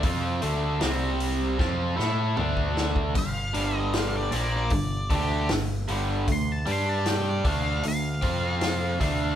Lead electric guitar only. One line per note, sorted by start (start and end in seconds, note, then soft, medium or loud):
3.18 3.75 F5 loud
3.75 3.93 D#5 loud
3.97 4.15 F5 medium
4.17 4.53 D5 medium
4.57 5.12 D5 medium
5.15 5.51 G4 medium
6.32 6.52 C6 medium
6.52 6.69 A5 medium
6.72 6.89 C6 medium
6.89 7.09 A5 medium
7.09 7.27 G5 medium
7.29 7.46 D5 medium
7.48 7.85 F5 medium
7.88 9.35 F5 loud